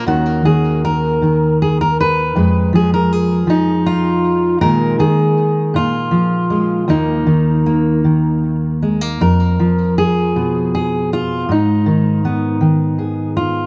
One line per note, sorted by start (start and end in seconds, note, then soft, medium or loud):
0.06 2.35 D#2 medium
0.06 0.44 D#3 medium
0.06 2.32 C#4 soft
0.06 1.22 F#4 medium
0.45 1.21 D#3 medium
0.45 0.83 G#4 medium
0.85 1.61 A#4 loud
1.22 2.36 D#3 medium
1.62 1.80 G#4 medium
1.81 1.99 A#4 medium
2.01 2.74 B4 loud
2.35 4.56 F2 medium
2.35 4.61 G#3 medium
2.73 3.47 F3 medium
2.73 2.93 G#4 loud
2.94 3.13 A#4 loud
3.13 3.86 G#4 loud
3.47 4.56 F3 medium
3.47 4.62 D#4 medium
3.86 4.61 F4 loud
4.61 4.99 A#2 medium
4.61 4.98 D#3 medium
4.61 6.49 G#3 medium
4.61 5.71 D#4 medium
4.61 4.99 A#4 loud
4.99 5.75 D#3 medium
4.99 5.75 G#4 loud
5.74 6.88 A#2 medium
5.74 6.89 F4 loud
6.11 6.83 F3 medium
6.50 6.88 G#3 soft
6.88 9.21 D#2 medium
6.88 7.25 D#3 soft
6.88 7.65 A#3 medium
6.88 9.22 D#4 medium
7.27 8.03 D#3 medium
7.66 8.82 A#3 soft
8.04 9.21 D#3 medium
8.82 9.01 G#3 soft
9.01 9.21 A#3 soft
9.21 11.45 F2 medium
9.21 9.98 A#4 loud
9.59 11.45 F3 medium
9.98 10.73 G#4 loud
10.36 11.45 B2 medium
10.75 11.12 G#4 medium
11.13 11.50 F4 medium
11.49 13.66 G#2 medium
11.49 13.37 D#4 medium
11.86 12.60 D#3 medium
12.25 13.66 B3 medium
12.61 13.66 D#3 medium
12.99 13.36 G#4 soft
13.37 13.66 F4 medium